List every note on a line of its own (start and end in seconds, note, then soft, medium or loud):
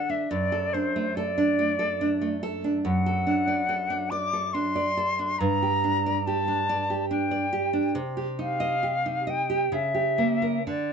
0.00 0.26 D3 medium
0.00 0.22 A4 medium
0.00 0.12 F#5 medium
0.09 0.31 D4 soft
0.09 0.32 E5 medium
0.30 2.80 F#2 medium
0.30 0.75 D5 medium
0.52 0.86 A4 soft
0.73 1.08 D4 medium
0.73 1.17 C5 medium
0.96 1.29 A3 medium
1.16 1.50 A4 medium
1.16 2.42 D5 medium
1.38 1.71 D4 medium
1.59 1.92 A3 medium
1.79 2.12 A4 medium
2.01 2.34 D4 medium
2.21 2.55 A3 soft
2.43 2.76 A4 medium
2.64 2.84 D4 medium
2.84 5.35 F#2 medium
2.84 4.12 F#5 medium
3.06 3.39 A4 medium
3.27 3.60 D4 medium
3.48 3.81 D5 medium
3.69 4.02 A4 medium
3.90 4.23 D4 medium
4.10 4.45 D5 medium
4.10 4.55 D6 medium
4.33 4.66 A4 medium
4.53 4.88 D4 medium
4.53 5.40 C6 medium
4.76 5.09 D5 medium
4.97 5.31 A4 medium
5.19 5.40 D4 soft
5.39 7.93 G2 medium
5.39 6.28 A#5 medium
5.62 5.96 G4 medium
5.84 6.17 D4 medium
6.06 6.39 D5 medium
6.26 6.60 G4 medium
6.26 7.10 A5 medium
6.48 6.81 D4 medium
6.69 7.02 D5 medium
6.90 7.23 G4 medium
7.10 7.44 D4 medium
7.10 7.94 G5 medium
7.31 7.65 D5 medium
7.53 7.87 G4 medium
7.73 7.95 D4 medium
7.95 9.69 C3 medium
8.17 8.52 G4 medium
8.39 8.74 D#4 medium
8.39 9.31 F5 medium
8.60 8.96 D#5 medium
8.83 9.19 G4 medium
9.06 9.42 D#4 medium
9.27 9.64 D#5 medium
9.27 9.75 G5 medium
9.50 9.73 G4 medium
9.72 10.64 C#3 medium
9.72 10.68 E5 medium
9.94 10.33 G4 soft
10.18 10.57 A#3 medium
10.42 10.67 A#4 soft
10.67 10.93 D3 medium
10.67 10.93 D5 medium